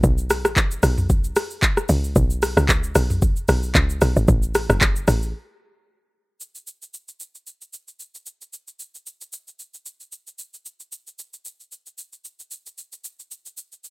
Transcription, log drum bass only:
0.04 B1
0.45 A1
0.83 B1
1.89 C#2
2.16 B1
2.57 C#2
2.95 B1
3.49 B1
3.75 C#2
4.02 B1
4.16 G#1
4.28 A1
4.70 F#1
5.08 A1

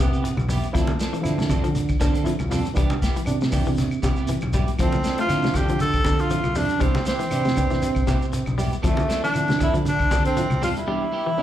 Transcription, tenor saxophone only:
Already playing: B3
4.81 C4
5.20 F4
5.56 G4
5.81 A4
6.21 F4
6.57 D4
6.81 C4
7.08 C4
8.86 A3
9.24 D4
9.63 E4
9.88 D4
10.26 C4
10.64 F4
10.77 E4

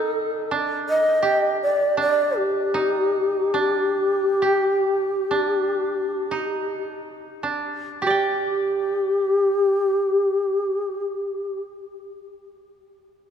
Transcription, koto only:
Already playing: D#4 G4
0.51 D4
1.23 G4
1.97 D4
2.74 D#4
3.54 D4
4.42 G4
5.31 D4
6.31 D#4
7.43 D4
8.02 G4
8.07 D5 G5

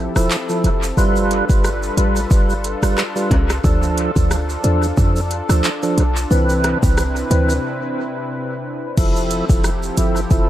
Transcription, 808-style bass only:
0.16 E1
0.64 F1
0.97 G1
1.50 G1
1.97 A1
2.31 G1
2.83 G1
3.31 C2
3.64 D2
4.16 D2
4.64 E2
4.97 F2
5.49 D2
5.98 B1
6.31 C2
6.83 C2
7.31 D2
8.98 F1
9.50 F1
9.97 G1
10.31 F1

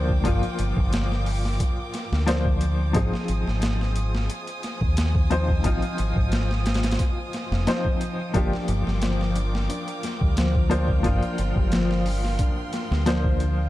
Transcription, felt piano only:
Already playing: F3 A#3 D4 C5
0.24 F3 A#3 D4 F4
2.26 F3 A#3 D4 C5
2.93 F3 C4 D#4 G#4
5.30 F3 C4 D#4 C5
5.64 F3 C4 D#4 F4
7.67 F3 C4 D#4 C5
8.34 F3 A#3 D4 G4
10.70 F3 A#3 D4 C5
11.03 F3 A#3 D4 F4
13.06 F3 A#3 D4 C5

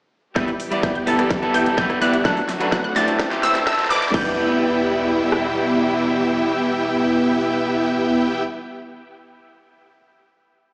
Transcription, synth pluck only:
0.36 G6
0.83 G6
0.95 G6
1.07 A6
1.54 G6
1.78 G6
2.01 F#6
2.25 F#6
2.72 F#6
2.84 F#6
2.96 A6
3.43 E6
3.67 E6
3.90 D6
4.14 G6

